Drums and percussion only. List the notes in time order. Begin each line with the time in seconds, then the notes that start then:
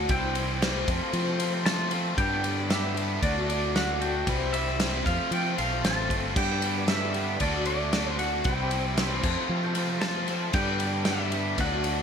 0.09 kick, ride
0.35 ride
0.62 snare, ride
0.88 kick, ride
1.13 ride
1.40 ride
1.66 snare, ride
1.91 ride
2.18 kick, ride
2.44 ride
2.70 snare, ride
2.97 ride
3.23 kick, ride
3.50 ride
3.76 snare, ride
4.02 ride
4.27 kick, ride
4.54 ride
4.80 snare, ride
5.06 kick, ride
5.32 ride
5.58 ride
5.85 snare, ride
6.10 kick, ride
6.36 kick, crash
6.62 ride
6.88 snare, ride
7.14 ride
7.40 kick, ride
7.65 ride
7.93 snare, ride
8.19 ride
8.44 kick, ride
8.71 ride
8.97 snare, ride
9.23 kick, crash
9.75 ride
10.01 snare, ride
10.28 ride
10.53 kick, ride
10.80 ride
11.05 snare, ride
11.32 ride
11.58 kick, ride
11.84 ride